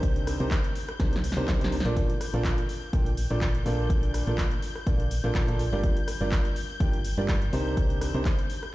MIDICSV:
0, 0, Header, 1, 5, 480
1, 0, Start_track
1, 0, Key_signature, -2, "major"
1, 0, Tempo, 483871
1, 29, Time_signature, 4, 2, 24, 8
1, 8679, End_track
2, 0, Start_track
2, 0, Title_t, "String section"
2, 0, Program_c, 0, 48
2, 0, Note_on_c, 0, 91, 79
2, 1936, Note_off_c, 0, 91, 0
2, 1947, Note_on_c, 0, 91, 82
2, 8679, Note_off_c, 0, 91, 0
2, 8679, End_track
3, 0, Start_track
3, 0, Title_t, "Upright piano"
3, 0, Program_c, 1, 0
3, 0, Note_on_c, 1, 48, 92
3, 0, Note_on_c, 1, 62, 81
3, 0, Note_on_c, 1, 63, 81
3, 0, Note_on_c, 1, 67, 84
3, 0, Note_on_c, 1, 70, 83
3, 0, Note_on_c, 1, 72, 99
3, 367, Note_off_c, 1, 48, 0
3, 367, Note_off_c, 1, 62, 0
3, 367, Note_off_c, 1, 63, 0
3, 367, Note_off_c, 1, 67, 0
3, 367, Note_off_c, 1, 70, 0
3, 367, Note_off_c, 1, 72, 0
3, 398, Note_on_c, 1, 48, 85
3, 398, Note_on_c, 1, 62, 77
3, 398, Note_on_c, 1, 63, 79
3, 398, Note_on_c, 1, 67, 77
3, 398, Note_on_c, 1, 70, 76
3, 398, Note_on_c, 1, 72, 96
3, 526, Note_off_c, 1, 48, 0
3, 526, Note_off_c, 1, 62, 0
3, 526, Note_off_c, 1, 63, 0
3, 526, Note_off_c, 1, 67, 0
3, 526, Note_off_c, 1, 70, 0
3, 526, Note_off_c, 1, 72, 0
3, 989, Note_on_c, 1, 48, 76
3, 989, Note_on_c, 1, 62, 71
3, 989, Note_on_c, 1, 63, 70
3, 989, Note_on_c, 1, 67, 70
3, 989, Note_on_c, 1, 70, 71
3, 989, Note_on_c, 1, 72, 84
3, 1132, Note_off_c, 1, 48, 0
3, 1133, Note_off_c, 1, 62, 0
3, 1133, Note_off_c, 1, 63, 0
3, 1133, Note_off_c, 1, 67, 0
3, 1133, Note_off_c, 1, 70, 0
3, 1133, Note_off_c, 1, 72, 0
3, 1357, Note_on_c, 1, 63, 88
3, 1358, Note_on_c, 1, 48, 90
3, 1358, Note_on_c, 1, 62, 86
3, 1358, Note_on_c, 1, 67, 84
3, 1358, Note_on_c, 1, 70, 86
3, 1358, Note_on_c, 1, 72, 104
3, 1452, Note_off_c, 1, 48, 0
3, 1452, Note_off_c, 1, 62, 0
3, 1452, Note_off_c, 1, 63, 0
3, 1452, Note_off_c, 1, 67, 0
3, 1452, Note_off_c, 1, 70, 0
3, 1452, Note_off_c, 1, 72, 0
3, 1469, Note_on_c, 1, 48, 73
3, 1469, Note_on_c, 1, 62, 68
3, 1469, Note_on_c, 1, 63, 71
3, 1469, Note_on_c, 1, 67, 68
3, 1469, Note_on_c, 1, 70, 68
3, 1578, Note_off_c, 1, 62, 0
3, 1579, Note_off_c, 1, 48, 0
3, 1579, Note_off_c, 1, 63, 0
3, 1579, Note_off_c, 1, 67, 0
3, 1579, Note_off_c, 1, 70, 0
3, 1597, Note_on_c, 1, 63, 75
3, 1597, Note_on_c, 1, 70, 74
3, 1598, Note_on_c, 1, 48, 83
3, 1598, Note_on_c, 1, 62, 73
3, 1598, Note_on_c, 1, 67, 75
3, 1598, Note_on_c, 1, 72, 86
3, 1725, Note_off_c, 1, 48, 0
3, 1725, Note_off_c, 1, 62, 0
3, 1725, Note_off_c, 1, 63, 0
3, 1725, Note_off_c, 1, 70, 0
3, 1726, Note_off_c, 1, 67, 0
3, 1726, Note_off_c, 1, 72, 0
3, 1837, Note_on_c, 1, 70, 88
3, 1837, Note_on_c, 1, 74, 107
3, 1838, Note_on_c, 1, 46, 99
3, 1838, Note_on_c, 1, 62, 90
3, 1838, Note_on_c, 1, 65, 88
3, 1838, Note_on_c, 1, 69, 91
3, 2053, Note_off_c, 1, 62, 0
3, 2053, Note_off_c, 1, 69, 0
3, 2053, Note_off_c, 1, 70, 0
3, 2053, Note_off_c, 1, 74, 0
3, 2054, Note_off_c, 1, 46, 0
3, 2054, Note_off_c, 1, 65, 0
3, 2317, Note_on_c, 1, 46, 92
3, 2317, Note_on_c, 1, 62, 86
3, 2318, Note_on_c, 1, 65, 84
3, 2318, Note_on_c, 1, 69, 89
3, 2318, Note_on_c, 1, 70, 86
3, 2318, Note_on_c, 1, 74, 106
3, 2533, Note_off_c, 1, 46, 0
3, 2533, Note_off_c, 1, 62, 0
3, 2533, Note_off_c, 1, 65, 0
3, 2533, Note_off_c, 1, 69, 0
3, 2533, Note_off_c, 1, 70, 0
3, 2533, Note_off_c, 1, 74, 0
3, 2908, Note_on_c, 1, 62, 73
3, 2908, Note_on_c, 1, 70, 72
3, 2909, Note_on_c, 1, 46, 77
3, 2909, Note_on_c, 1, 65, 70
3, 2909, Note_on_c, 1, 69, 71
3, 2909, Note_on_c, 1, 79, 86
3, 3052, Note_off_c, 1, 62, 0
3, 3052, Note_off_c, 1, 70, 0
3, 3053, Note_off_c, 1, 46, 0
3, 3053, Note_off_c, 1, 65, 0
3, 3053, Note_off_c, 1, 69, 0
3, 3053, Note_off_c, 1, 79, 0
3, 3277, Note_on_c, 1, 46, 91
3, 3277, Note_on_c, 1, 62, 81
3, 3277, Note_on_c, 1, 65, 81
3, 3277, Note_on_c, 1, 69, 83
3, 3277, Note_on_c, 1, 70, 82
3, 3277, Note_on_c, 1, 74, 99
3, 3405, Note_off_c, 1, 46, 0
3, 3405, Note_off_c, 1, 62, 0
3, 3405, Note_off_c, 1, 65, 0
3, 3405, Note_off_c, 1, 69, 0
3, 3405, Note_off_c, 1, 70, 0
3, 3405, Note_off_c, 1, 74, 0
3, 3628, Note_on_c, 1, 62, 83
3, 3628, Note_on_c, 1, 65, 82
3, 3628, Note_on_c, 1, 69, 82
3, 3628, Note_on_c, 1, 70, 80
3, 3629, Note_on_c, 1, 46, 91
3, 3629, Note_on_c, 1, 74, 96
3, 4207, Note_off_c, 1, 46, 0
3, 4207, Note_off_c, 1, 62, 0
3, 4207, Note_off_c, 1, 65, 0
3, 4207, Note_off_c, 1, 69, 0
3, 4207, Note_off_c, 1, 70, 0
3, 4207, Note_off_c, 1, 74, 0
3, 4236, Note_on_c, 1, 70, 76
3, 4237, Note_on_c, 1, 46, 83
3, 4237, Note_on_c, 1, 62, 78
3, 4237, Note_on_c, 1, 65, 80
3, 4237, Note_on_c, 1, 69, 79
3, 4237, Note_on_c, 1, 74, 91
3, 4365, Note_off_c, 1, 46, 0
3, 4365, Note_off_c, 1, 62, 0
3, 4365, Note_off_c, 1, 65, 0
3, 4365, Note_off_c, 1, 69, 0
3, 4365, Note_off_c, 1, 70, 0
3, 4365, Note_off_c, 1, 74, 0
3, 4827, Note_on_c, 1, 46, 78
3, 4827, Note_on_c, 1, 65, 71
3, 4827, Note_on_c, 1, 69, 69
3, 4827, Note_on_c, 1, 70, 71
3, 4827, Note_on_c, 1, 74, 88
3, 4828, Note_on_c, 1, 62, 72
3, 4972, Note_off_c, 1, 46, 0
3, 4972, Note_off_c, 1, 62, 0
3, 4972, Note_off_c, 1, 65, 0
3, 4972, Note_off_c, 1, 69, 0
3, 4972, Note_off_c, 1, 70, 0
3, 4972, Note_off_c, 1, 74, 0
3, 5197, Note_on_c, 1, 46, 91
3, 5197, Note_on_c, 1, 62, 86
3, 5197, Note_on_c, 1, 65, 86
3, 5197, Note_on_c, 1, 69, 83
3, 5197, Note_on_c, 1, 70, 87
3, 5197, Note_on_c, 1, 74, 105
3, 5291, Note_off_c, 1, 65, 0
3, 5291, Note_off_c, 1, 70, 0
3, 5292, Note_off_c, 1, 46, 0
3, 5292, Note_off_c, 1, 62, 0
3, 5292, Note_off_c, 1, 69, 0
3, 5292, Note_off_c, 1, 74, 0
3, 5437, Note_on_c, 1, 46, 83
3, 5437, Note_on_c, 1, 65, 72
3, 5437, Note_on_c, 1, 70, 73
3, 5438, Note_on_c, 1, 62, 74
3, 5438, Note_on_c, 1, 69, 77
3, 5438, Note_on_c, 1, 74, 92
3, 5565, Note_off_c, 1, 46, 0
3, 5565, Note_off_c, 1, 65, 0
3, 5566, Note_off_c, 1, 62, 0
3, 5566, Note_off_c, 1, 69, 0
3, 5566, Note_off_c, 1, 70, 0
3, 5566, Note_off_c, 1, 74, 0
3, 5677, Note_on_c, 1, 55, 100
3, 5677, Note_on_c, 1, 67, 93
3, 5677, Note_on_c, 1, 74, 109
3, 5678, Note_on_c, 1, 62, 91
3, 5678, Note_on_c, 1, 65, 89
3, 5678, Note_on_c, 1, 70, 92
3, 5893, Note_off_c, 1, 55, 0
3, 5893, Note_off_c, 1, 62, 0
3, 5893, Note_off_c, 1, 65, 0
3, 5893, Note_off_c, 1, 67, 0
3, 5893, Note_off_c, 1, 70, 0
3, 5893, Note_off_c, 1, 74, 0
3, 6158, Note_on_c, 1, 55, 94
3, 6158, Note_on_c, 1, 62, 90
3, 6158, Note_on_c, 1, 65, 88
3, 6158, Note_on_c, 1, 67, 87
3, 6158, Note_on_c, 1, 70, 88
3, 6158, Note_on_c, 1, 74, 105
3, 6373, Note_off_c, 1, 67, 0
3, 6373, Note_off_c, 1, 74, 0
3, 6374, Note_off_c, 1, 55, 0
3, 6374, Note_off_c, 1, 62, 0
3, 6374, Note_off_c, 1, 65, 0
3, 6374, Note_off_c, 1, 70, 0
3, 6749, Note_on_c, 1, 62, 70
3, 6749, Note_on_c, 1, 67, 74
3, 6749, Note_on_c, 1, 70, 73
3, 6749, Note_on_c, 1, 79, 89
3, 6750, Note_on_c, 1, 55, 79
3, 6750, Note_on_c, 1, 65, 73
3, 6893, Note_off_c, 1, 55, 0
3, 6893, Note_off_c, 1, 62, 0
3, 6893, Note_off_c, 1, 65, 0
3, 6893, Note_off_c, 1, 67, 0
3, 6893, Note_off_c, 1, 70, 0
3, 6893, Note_off_c, 1, 79, 0
3, 7119, Note_on_c, 1, 55, 87
3, 7119, Note_on_c, 1, 62, 81
3, 7119, Note_on_c, 1, 65, 80
3, 7119, Note_on_c, 1, 67, 83
3, 7119, Note_on_c, 1, 70, 82
3, 7119, Note_on_c, 1, 74, 100
3, 7246, Note_off_c, 1, 55, 0
3, 7246, Note_off_c, 1, 62, 0
3, 7246, Note_off_c, 1, 65, 0
3, 7246, Note_off_c, 1, 67, 0
3, 7246, Note_off_c, 1, 70, 0
3, 7246, Note_off_c, 1, 74, 0
3, 7469, Note_on_c, 1, 48, 86
3, 7469, Note_on_c, 1, 62, 82
3, 7469, Note_on_c, 1, 63, 82
3, 7469, Note_on_c, 1, 67, 85
3, 7469, Note_on_c, 1, 70, 83
3, 7469, Note_on_c, 1, 72, 102
3, 8047, Note_off_c, 1, 48, 0
3, 8047, Note_off_c, 1, 62, 0
3, 8047, Note_off_c, 1, 63, 0
3, 8047, Note_off_c, 1, 67, 0
3, 8047, Note_off_c, 1, 70, 0
3, 8047, Note_off_c, 1, 72, 0
3, 8078, Note_on_c, 1, 48, 85
3, 8078, Note_on_c, 1, 62, 78
3, 8078, Note_on_c, 1, 63, 79
3, 8078, Note_on_c, 1, 67, 78
3, 8078, Note_on_c, 1, 70, 76
3, 8078, Note_on_c, 1, 72, 97
3, 8206, Note_off_c, 1, 48, 0
3, 8206, Note_off_c, 1, 62, 0
3, 8206, Note_off_c, 1, 63, 0
3, 8206, Note_off_c, 1, 67, 0
3, 8206, Note_off_c, 1, 70, 0
3, 8206, Note_off_c, 1, 72, 0
3, 8679, End_track
4, 0, Start_track
4, 0, Title_t, "FM bass"
4, 0, Program_c, 2, 39
4, 0, Note_on_c, 2, 36, 98
4, 372, Note_off_c, 2, 36, 0
4, 397, Note_on_c, 2, 36, 99
4, 501, Note_off_c, 2, 36, 0
4, 989, Note_on_c, 2, 36, 98
4, 1332, Note_off_c, 2, 36, 0
4, 1358, Note_on_c, 2, 36, 102
4, 1447, Note_off_c, 2, 36, 0
4, 1469, Note_on_c, 2, 36, 94
4, 1572, Note_off_c, 2, 36, 0
4, 1600, Note_on_c, 2, 36, 95
4, 1813, Note_off_c, 2, 36, 0
4, 1838, Note_on_c, 2, 34, 96
4, 2028, Note_off_c, 2, 34, 0
4, 2317, Note_on_c, 2, 34, 97
4, 2507, Note_off_c, 2, 34, 0
4, 2908, Note_on_c, 2, 34, 100
4, 3252, Note_off_c, 2, 34, 0
4, 3278, Note_on_c, 2, 34, 100
4, 3606, Note_off_c, 2, 34, 0
4, 3628, Note_on_c, 2, 34, 99
4, 4212, Note_off_c, 2, 34, 0
4, 4236, Note_on_c, 2, 34, 99
4, 4340, Note_off_c, 2, 34, 0
4, 4827, Note_on_c, 2, 34, 98
4, 5171, Note_off_c, 2, 34, 0
4, 5197, Note_on_c, 2, 34, 100
4, 5286, Note_off_c, 2, 34, 0
4, 5308, Note_on_c, 2, 34, 100
4, 5412, Note_off_c, 2, 34, 0
4, 5437, Note_on_c, 2, 34, 96
4, 5651, Note_off_c, 2, 34, 0
4, 5676, Note_on_c, 2, 31, 97
4, 5867, Note_off_c, 2, 31, 0
4, 6157, Note_on_c, 2, 31, 102
4, 6347, Note_off_c, 2, 31, 0
4, 6748, Note_on_c, 2, 31, 99
4, 7092, Note_off_c, 2, 31, 0
4, 7118, Note_on_c, 2, 43, 100
4, 7447, Note_off_c, 2, 43, 0
4, 7468, Note_on_c, 2, 36, 96
4, 8052, Note_off_c, 2, 36, 0
4, 8077, Note_on_c, 2, 36, 95
4, 8181, Note_off_c, 2, 36, 0
4, 8679, End_track
5, 0, Start_track
5, 0, Title_t, "Drums"
5, 29, Note_on_c, 9, 36, 112
5, 29, Note_on_c, 9, 42, 85
5, 128, Note_off_c, 9, 36, 0
5, 128, Note_off_c, 9, 42, 0
5, 159, Note_on_c, 9, 42, 56
5, 258, Note_off_c, 9, 42, 0
5, 269, Note_on_c, 9, 37, 71
5, 269, Note_on_c, 9, 46, 107
5, 368, Note_off_c, 9, 37, 0
5, 368, Note_off_c, 9, 46, 0
5, 398, Note_on_c, 9, 42, 39
5, 498, Note_off_c, 9, 42, 0
5, 505, Note_on_c, 9, 39, 118
5, 508, Note_on_c, 9, 42, 84
5, 509, Note_on_c, 9, 36, 106
5, 604, Note_off_c, 9, 39, 0
5, 608, Note_off_c, 9, 36, 0
5, 608, Note_off_c, 9, 42, 0
5, 638, Note_on_c, 9, 42, 55
5, 737, Note_off_c, 9, 42, 0
5, 749, Note_on_c, 9, 46, 85
5, 848, Note_off_c, 9, 46, 0
5, 879, Note_on_c, 9, 37, 66
5, 879, Note_on_c, 9, 42, 38
5, 978, Note_off_c, 9, 37, 0
5, 978, Note_off_c, 9, 42, 0
5, 989, Note_on_c, 9, 36, 114
5, 989, Note_on_c, 9, 38, 66
5, 989, Note_on_c, 9, 42, 81
5, 1088, Note_off_c, 9, 36, 0
5, 1088, Note_off_c, 9, 38, 0
5, 1088, Note_off_c, 9, 42, 0
5, 1118, Note_on_c, 9, 42, 54
5, 1149, Note_on_c, 9, 38, 71
5, 1217, Note_off_c, 9, 42, 0
5, 1229, Note_on_c, 9, 46, 99
5, 1248, Note_off_c, 9, 38, 0
5, 1309, Note_on_c, 9, 38, 81
5, 1328, Note_off_c, 9, 46, 0
5, 1359, Note_on_c, 9, 42, 38
5, 1408, Note_off_c, 9, 38, 0
5, 1458, Note_off_c, 9, 42, 0
5, 1466, Note_on_c, 9, 39, 116
5, 1469, Note_on_c, 9, 36, 105
5, 1469, Note_on_c, 9, 38, 89
5, 1469, Note_on_c, 9, 42, 83
5, 1565, Note_off_c, 9, 39, 0
5, 1568, Note_off_c, 9, 36, 0
5, 1568, Note_off_c, 9, 38, 0
5, 1568, Note_off_c, 9, 42, 0
5, 1599, Note_on_c, 9, 42, 55
5, 1629, Note_on_c, 9, 38, 95
5, 1698, Note_off_c, 9, 42, 0
5, 1709, Note_on_c, 9, 46, 86
5, 1728, Note_off_c, 9, 38, 0
5, 1789, Note_on_c, 9, 38, 102
5, 1808, Note_off_c, 9, 46, 0
5, 1839, Note_on_c, 9, 42, 38
5, 1888, Note_off_c, 9, 38, 0
5, 1938, Note_off_c, 9, 42, 0
5, 1949, Note_on_c, 9, 36, 116
5, 1949, Note_on_c, 9, 42, 83
5, 2048, Note_off_c, 9, 36, 0
5, 2048, Note_off_c, 9, 42, 0
5, 2079, Note_on_c, 9, 42, 55
5, 2178, Note_off_c, 9, 42, 0
5, 2190, Note_on_c, 9, 37, 66
5, 2190, Note_on_c, 9, 46, 107
5, 2289, Note_off_c, 9, 37, 0
5, 2289, Note_off_c, 9, 46, 0
5, 2319, Note_on_c, 9, 42, 38
5, 2418, Note_off_c, 9, 42, 0
5, 2425, Note_on_c, 9, 39, 123
5, 2428, Note_on_c, 9, 42, 81
5, 2429, Note_on_c, 9, 36, 111
5, 2525, Note_off_c, 9, 39, 0
5, 2528, Note_off_c, 9, 36, 0
5, 2528, Note_off_c, 9, 42, 0
5, 2559, Note_on_c, 9, 42, 55
5, 2658, Note_off_c, 9, 42, 0
5, 2669, Note_on_c, 9, 46, 91
5, 2768, Note_off_c, 9, 46, 0
5, 2908, Note_on_c, 9, 36, 118
5, 2908, Note_on_c, 9, 42, 83
5, 3007, Note_off_c, 9, 36, 0
5, 3007, Note_off_c, 9, 42, 0
5, 3038, Note_on_c, 9, 42, 54
5, 3137, Note_off_c, 9, 42, 0
5, 3148, Note_on_c, 9, 46, 104
5, 3247, Note_off_c, 9, 46, 0
5, 3277, Note_on_c, 9, 42, 36
5, 3376, Note_off_c, 9, 42, 0
5, 3385, Note_on_c, 9, 39, 124
5, 3388, Note_on_c, 9, 36, 108
5, 3389, Note_on_c, 9, 42, 82
5, 3485, Note_off_c, 9, 39, 0
5, 3487, Note_off_c, 9, 36, 0
5, 3488, Note_off_c, 9, 42, 0
5, 3518, Note_on_c, 9, 42, 56
5, 3617, Note_off_c, 9, 42, 0
5, 3629, Note_on_c, 9, 46, 91
5, 3728, Note_off_c, 9, 46, 0
5, 3868, Note_on_c, 9, 36, 120
5, 3868, Note_on_c, 9, 42, 80
5, 3967, Note_off_c, 9, 36, 0
5, 3967, Note_off_c, 9, 42, 0
5, 3997, Note_on_c, 9, 42, 55
5, 4097, Note_off_c, 9, 42, 0
5, 4108, Note_on_c, 9, 37, 66
5, 4108, Note_on_c, 9, 46, 112
5, 4207, Note_off_c, 9, 37, 0
5, 4207, Note_off_c, 9, 46, 0
5, 4237, Note_on_c, 9, 42, 38
5, 4336, Note_off_c, 9, 42, 0
5, 4345, Note_on_c, 9, 39, 125
5, 4348, Note_on_c, 9, 36, 112
5, 4348, Note_on_c, 9, 42, 80
5, 4444, Note_off_c, 9, 39, 0
5, 4447, Note_off_c, 9, 36, 0
5, 4447, Note_off_c, 9, 42, 0
5, 4477, Note_on_c, 9, 42, 54
5, 4576, Note_off_c, 9, 42, 0
5, 4588, Note_on_c, 9, 46, 94
5, 4687, Note_off_c, 9, 46, 0
5, 4717, Note_on_c, 9, 37, 60
5, 4816, Note_off_c, 9, 37, 0
5, 4827, Note_on_c, 9, 42, 81
5, 4828, Note_on_c, 9, 36, 123
5, 4927, Note_off_c, 9, 36, 0
5, 4927, Note_off_c, 9, 42, 0
5, 4957, Note_on_c, 9, 42, 51
5, 5056, Note_off_c, 9, 42, 0
5, 5069, Note_on_c, 9, 46, 106
5, 5168, Note_off_c, 9, 46, 0
5, 5198, Note_on_c, 9, 42, 36
5, 5297, Note_off_c, 9, 42, 0
5, 5305, Note_on_c, 9, 39, 123
5, 5308, Note_on_c, 9, 36, 112
5, 5308, Note_on_c, 9, 42, 81
5, 5405, Note_off_c, 9, 39, 0
5, 5407, Note_off_c, 9, 36, 0
5, 5408, Note_off_c, 9, 42, 0
5, 5438, Note_on_c, 9, 42, 54
5, 5537, Note_off_c, 9, 42, 0
5, 5549, Note_on_c, 9, 46, 95
5, 5648, Note_off_c, 9, 46, 0
5, 5788, Note_on_c, 9, 36, 122
5, 5789, Note_on_c, 9, 42, 76
5, 5887, Note_off_c, 9, 36, 0
5, 5888, Note_off_c, 9, 42, 0
5, 5918, Note_on_c, 9, 42, 51
5, 6017, Note_off_c, 9, 42, 0
5, 6028, Note_on_c, 9, 37, 65
5, 6028, Note_on_c, 9, 46, 115
5, 6127, Note_off_c, 9, 37, 0
5, 6127, Note_off_c, 9, 46, 0
5, 6265, Note_on_c, 9, 39, 124
5, 6268, Note_on_c, 9, 36, 114
5, 6268, Note_on_c, 9, 42, 78
5, 6364, Note_off_c, 9, 39, 0
5, 6367, Note_off_c, 9, 42, 0
5, 6368, Note_off_c, 9, 36, 0
5, 6398, Note_on_c, 9, 42, 51
5, 6497, Note_off_c, 9, 42, 0
5, 6508, Note_on_c, 9, 46, 96
5, 6608, Note_off_c, 9, 46, 0
5, 6748, Note_on_c, 9, 42, 75
5, 6749, Note_on_c, 9, 36, 125
5, 6847, Note_off_c, 9, 42, 0
5, 6848, Note_off_c, 9, 36, 0
5, 6878, Note_on_c, 9, 42, 50
5, 6977, Note_off_c, 9, 42, 0
5, 6988, Note_on_c, 9, 46, 107
5, 7088, Note_off_c, 9, 46, 0
5, 7118, Note_on_c, 9, 42, 36
5, 7217, Note_off_c, 9, 42, 0
5, 7225, Note_on_c, 9, 39, 126
5, 7228, Note_on_c, 9, 42, 79
5, 7229, Note_on_c, 9, 36, 110
5, 7324, Note_off_c, 9, 39, 0
5, 7327, Note_off_c, 9, 42, 0
5, 7328, Note_off_c, 9, 36, 0
5, 7358, Note_on_c, 9, 42, 51
5, 7457, Note_off_c, 9, 42, 0
5, 7468, Note_on_c, 9, 46, 95
5, 7568, Note_off_c, 9, 46, 0
5, 7709, Note_on_c, 9, 36, 122
5, 7709, Note_on_c, 9, 42, 76
5, 7808, Note_off_c, 9, 36, 0
5, 7808, Note_off_c, 9, 42, 0
5, 7838, Note_on_c, 9, 42, 51
5, 7938, Note_off_c, 9, 42, 0
5, 7950, Note_on_c, 9, 37, 68
5, 7950, Note_on_c, 9, 46, 115
5, 8049, Note_off_c, 9, 37, 0
5, 8049, Note_off_c, 9, 46, 0
5, 8079, Note_on_c, 9, 42, 36
5, 8178, Note_off_c, 9, 42, 0
5, 8186, Note_on_c, 9, 39, 121
5, 8189, Note_on_c, 9, 36, 113
5, 8189, Note_on_c, 9, 42, 75
5, 8285, Note_off_c, 9, 39, 0
5, 8288, Note_off_c, 9, 36, 0
5, 8288, Note_off_c, 9, 42, 0
5, 8318, Note_on_c, 9, 42, 50
5, 8418, Note_off_c, 9, 42, 0
5, 8429, Note_on_c, 9, 46, 92
5, 8529, Note_off_c, 9, 46, 0
5, 8558, Note_on_c, 9, 37, 60
5, 8657, Note_off_c, 9, 37, 0
5, 8679, End_track
0, 0, End_of_file